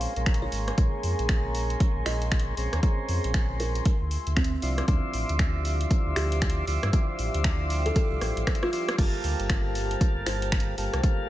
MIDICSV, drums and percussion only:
0, 0, Header, 1, 2, 480
1, 0, Start_track
1, 0, Tempo, 512821
1, 729, Time_signature, 4, 2, 24, 8
1, 10568, End_track
2, 0, Start_track
2, 0, Title_t, "Drums"
2, 8, Note_on_c, 9, 46, 105
2, 101, Note_off_c, 9, 46, 0
2, 154, Note_on_c, 9, 42, 48
2, 246, Note_on_c, 9, 26, 116
2, 247, Note_off_c, 9, 42, 0
2, 247, Note_on_c, 9, 42, 47
2, 248, Note_on_c, 9, 36, 106
2, 321, Note_off_c, 9, 42, 0
2, 321, Note_on_c, 9, 42, 60
2, 340, Note_off_c, 9, 26, 0
2, 342, Note_off_c, 9, 36, 0
2, 414, Note_off_c, 9, 42, 0
2, 488, Note_on_c, 9, 46, 94
2, 581, Note_off_c, 9, 46, 0
2, 634, Note_on_c, 9, 37, 58
2, 634, Note_on_c, 9, 42, 49
2, 727, Note_off_c, 9, 37, 0
2, 727, Note_off_c, 9, 42, 0
2, 728, Note_on_c, 9, 36, 118
2, 728, Note_on_c, 9, 42, 63
2, 821, Note_off_c, 9, 42, 0
2, 822, Note_off_c, 9, 36, 0
2, 968, Note_on_c, 9, 46, 107
2, 1061, Note_off_c, 9, 46, 0
2, 1115, Note_on_c, 9, 42, 52
2, 1206, Note_on_c, 9, 26, 114
2, 1207, Note_off_c, 9, 42, 0
2, 1207, Note_on_c, 9, 42, 62
2, 1208, Note_on_c, 9, 36, 105
2, 1300, Note_off_c, 9, 26, 0
2, 1301, Note_off_c, 9, 42, 0
2, 1302, Note_off_c, 9, 36, 0
2, 1448, Note_on_c, 9, 46, 92
2, 1541, Note_off_c, 9, 46, 0
2, 1594, Note_on_c, 9, 42, 50
2, 1687, Note_off_c, 9, 42, 0
2, 1688, Note_on_c, 9, 36, 121
2, 1688, Note_on_c, 9, 42, 60
2, 1781, Note_off_c, 9, 42, 0
2, 1782, Note_off_c, 9, 36, 0
2, 1928, Note_on_c, 9, 26, 60
2, 1929, Note_on_c, 9, 46, 108
2, 2021, Note_off_c, 9, 26, 0
2, 2022, Note_off_c, 9, 46, 0
2, 2075, Note_on_c, 9, 42, 49
2, 2168, Note_on_c, 9, 26, 117
2, 2169, Note_off_c, 9, 42, 0
2, 2169, Note_on_c, 9, 36, 103
2, 2169, Note_on_c, 9, 42, 46
2, 2242, Note_off_c, 9, 42, 0
2, 2242, Note_on_c, 9, 42, 59
2, 2261, Note_off_c, 9, 26, 0
2, 2262, Note_off_c, 9, 36, 0
2, 2335, Note_off_c, 9, 42, 0
2, 2408, Note_on_c, 9, 46, 91
2, 2502, Note_off_c, 9, 46, 0
2, 2554, Note_on_c, 9, 37, 63
2, 2554, Note_on_c, 9, 42, 50
2, 2648, Note_off_c, 9, 37, 0
2, 2648, Note_off_c, 9, 42, 0
2, 2648, Note_on_c, 9, 42, 62
2, 2649, Note_on_c, 9, 36, 116
2, 2742, Note_off_c, 9, 36, 0
2, 2742, Note_off_c, 9, 42, 0
2, 2888, Note_on_c, 9, 46, 101
2, 2982, Note_off_c, 9, 46, 0
2, 3035, Note_on_c, 9, 42, 51
2, 3128, Note_on_c, 9, 26, 117
2, 3129, Note_off_c, 9, 42, 0
2, 3129, Note_on_c, 9, 36, 98
2, 3129, Note_on_c, 9, 42, 63
2, 3221, Note_off_c, 9, 26, 0
2, 3222, Note_off_c, 9, 36, 0
2, 3222, Note_off_c, 9, 42, 0
2, 3368, Note_on_c, 9, 46, 86
2, 3461, Note_off_c, 9, 46, 0
2, 3514, Note_on_c, 9, 42, 50
2, 3607, Note_off_c, 9, 42, 0
2, 3608, Note_on_c, 9, 42, 64
2, 3609, Note_on_c, 9, 36, 119
2, 3701, Note_off_c, 9, 42, 0
2, 3702, Note_off_c, 9, 36, 0
2, 3847, Note_on_c, 9, 46, 102
2, 3941, Note_off_c, 9, 46, 0
2, 3994, Note_on_c, 9, 42, 52
2, 4086, Note_on_c, 9, 26, 118
2, 4087, Note_off_c, 9, 42, 0
2, 4087, Note_on_c, 9, 42, 50
2, 4089, Note_on_c, 9, 36, 102
2, 4160, Note_off_c, 9, 42, 0
2, 4160, Note_on_c, 9, 42, 65
2, 4180, Note_off_c, 9, 26, 0
2, 4182, Note_off_c, 9, 36, 0
2, 4253, Note_off_c, 9, 42, 0
2, 4327, Note_on_c, 9, 46, 89
2, 4421, Note_off_c, 9, 46, 0
2, 4474, Note_on_c, 9, 37, 63
2, 4474, Note_on_c, 9, 42, 52
2, 4567, Note_off_c, 9, 37, 0
2, 4567, Note_off_c, 9, 42, 0
2, 4567, Note_on_c, 9, 42, 65
2, 4569, Note_on_c, 9, 36, 113
2, 4661, Note_off_c, 9, 42, 0
2, 4662, Note_off_c, 9, 36, 0
2, 4806, Note_on_c, 9, 46, 102
2, 4900, Note_off_c, 9, 46, 0
2, 4954, Note_on_c, 9, 42, 54
2, 5047, Note_on_c, 9, 26, 120
2, 5048, Note_off_c, 9, 42, 0
2, 5048, Note_on_c, 9, 36, 99
2, 5048, Note_on_c, 9, 42, 67
2, 5141, Note_off_c, 9, 26, 0
2, 5142, Note_off_c, 9, 36, 0
2, 5142, Note_off_c, 9, 42, 0
2, 5288, Note_on_c, 9, 46, 86
2, 5381, Note_off_c, 9, 46, 0
2, 5435, Note_on_c, 9, 42, 53
2, 5528, Note_off_c, 9, 42, 0
2, 5528, Note_on_c, 9, 36, 111
2, 5528, Note_on_c, 9, 42, 66
2, 5622, Note_off_c, 9, 36, 0
2, 5622, Note_off_c, 9, 42, 0
2, 5768, Note_on_c, 9, 26, 60
2, 5769, Note_on_c, 9, 46, 102
2, 5862, Note_off_c, 9, 26, 0
2, 5862, Note_off_c, 9, 46, 0
2, 5916, Note_on_c, 9, 42, 55
2, 6007, Note_on_c, 9, 26, 116
2, 6008, Note_off_c, 9, 42, 0
2, 6008, Note_on_c, 9, 36, 101
2, 6008, Note_on_c, 9, 42, 50
2, 6081, Note_off_c, 9, 42, 0
2, 6081, Note_on_c, 9, 42, 66
2, 6101, Note_off_c, 9, 26, 0
2, 6102, Note_off_c, 9, 36, 0
2, 6174, Note_off_c, 9, 42, 0
2, 6247, Note_on_c, 9, 46, 83
2, 6341, Note_off_c, 9, 46, 0
2, 6394, Note_on_c, 9, 37, 65
2, 6394, Note_on_c, 9, 42, 52
2, 6487, Note_off_c, 9, 37, 0
2, 6487, Note_off_c, 9, 42, 0
2, 6488, Note_on_c, 9, 42, 68
2, 6489, Note_on_c, 9, 36, 116
2, 6581, Note_off_c, 9, 42, 0
2, 6582, Note_off_c, 9, 36, 0
2, 6727, Note_on_c, 9, 46, 100
2, 6821, Note_off_c, 9, 46, 0
2, 6874, Note_on_c, 9, 42, 55
2, 6967, Note_on_c, 9, 26, 124
2, 6968, Note_off_c, 9, 42, 0
2, 6968, Note_on_c, 9, 42, 68
2, 6969, Note_on_c, 9, 36, 102
2, 7060, Note_off_c, 9, 26, 0
2, 7061, Note_off_c, 9, 42, 0
2, 7062, Note_off_c, 9, 36, 0
2, 7209, Note_on_c, 9, 46, 90
2, 7302, Note_off_c, 9, 46, 0
2, 7355, Note_on_c, 9, 42, 54
2, 7448, Note_off_c, 9, 42, 0
2, 7448, Note_on_c, 9, 42, 68
2, 7449, Note_on_c, 9, 36, 115
2, 7542, Note_off_c, 9, 36, 0
2, 7542, Note_off_c, 9, 42, 0
2, 7688, Note_on_c, 9, 37, 60
2, 7688, Note_on_c, 9, 46, 97
2, 7782, Note_off_c, 9, 37, 0
2, 7782, Note_off_c, 9, 46, 0
2, 7835, Note_on_c, 9, 42, 54
2, 7929, Note_off_c, 9, 42, 0
2, 7929, Note_on_c, 9, 26, 120
2, 7929, Note_on_c, 9, 36, 101
2, 7930, Note_on_c, 9, 37, 78
2, 7930, Note_on_c, 9, 42, 51
2, 8003, Note_off_c, 9, 42, 0
2, 8003, Note_on_c, 9, 42, 66
2, 8022, Note_off_c, 9, 26, 0
2, 8023, Note_off_c, 9, 36, 0
2, 8023, Note_off_c, 9, 37, 0
2, 8076, Note_on_c, 9, 37, 74
2, 8097, Note_off_c, 9, 42, 0
2, 8169, Note_off_c, 9, 37, 0
2, 8170, Note_on_c, 9, 46, 84
2, 8263, Note_off_c, 9, 46, 0
2, 8317, Note_on_c, 9, 37, 89
2, 8317, Note_on_c, 9, 42, 54
2, 8409, Note_on_c, 9, 36, 120
2, 8410, Note_off_c, 9, 37, 0
2, 8410, Note_off_c, 9, 42, 0
2, 8410, Note_on_c, 9, 42, 68
2, 8410, Note_on_c, 9, 49, 74
2, 8503, Note_off_c, 9, 36, 0
2, 8504, Note_off_c, 9, 42, 0
2, 8504, Note_off_c, 9, 49, 0
2, 8649, Note_on_c, 9, 46, 107
2, 8742, Note_off_c, 9, 46, 0
2, 8795, Note_on_c, 9, 42, 54
2, 8888, Note_on_c, 9, 26, 121
2, 8889, Note_off_c, 9, 42, 0
2, 8889, Note_on_c, 9, 36, 104
2, 8889, Note_on_c, 9, 42, 69
2, 8982, Note_off_c, 9, 26, 0
2, 8982, Note_off_c, 9, 36, 0
2, 8983, Note_off_c, 9, 42, 0
2, 9128, Note_on_c, 9, 46, 94
2, 9222, Note_off_c, 9, 46, 0
2, 9275, Note_on_c, 9, 42, 52
2, 9369, Note_off_c, 9, 42, 0
2, 9369, Note_on_c, 9, 36, 122
2, 9369, Note_on_c, 9, 42, 70
2, 9462, Note_off_c, 9, 36, 0
2, 9463, Note_off_c, 9, 42, 0
2, 9608, Note_on_c, 9, 26, 65
2, 9609, Note_on_c, 9, 46, 109
2, 9702, Note_off_c, 9, 26, 0
2, 9703, Note_off_c, 9, 46, 0
2, 9755, Note_on_c, 9, 42, 54
2, 9848, Note_on_c, 9, 26, 124
2, 9849, Note_off_c, 9, 42, 0
2, 9849, Note_on_c, 9, 36, 104
2, 9849, Note_on_c, 9, 42, 52
2, 9922, Note_off_c, 9, 42, 0
2, 9922, Note_on_c, 9, 42, 68
2, 9942, Note_off_c, 9, 26, 0
2, 9942, Note_off_c, 9, 36, 0
2, 10016, Note_off_c, 9, 42, 0
2, 10089, Note_on_c, 9, 46, 88
2, 10182, Note_off_c, 9, 46, 0
2, 10235, Note_on_c, 9, 37, 60
2, 10235, Note_on_c, 9, 42, 56
2, 10329, Note_off_c, 9, 37, 0
2, 10329, Note_off_c, 9, 42, 0
2, 10329, Note_on_c, 9, 36, 121
2, 10329, Note_on_c, 9, 42, 67
2, 10422, Note_off_c, 9, 36, 0
2, 10422, Note_off_c, 9, 42, 0
2, 10568, End_track
0, 0, End_of_file